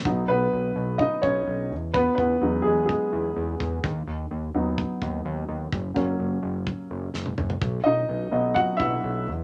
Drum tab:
SD |----------------|----------------|----------------|------------o---|
T1 |----------------|----------------|----------------|-------------o--|
T2 |----------------|----------------|----------------|--------------o-|
FT |----------------|----------------|----------------|---------------o|
BD |o-------o-o-----|o-o-----o-----o-|o-------o-o-----|o-o-----o-------|

SD |----------------|
T1 |----------------|
T2 |----------------|
FT |----------------|
BD |o-------o-o-----|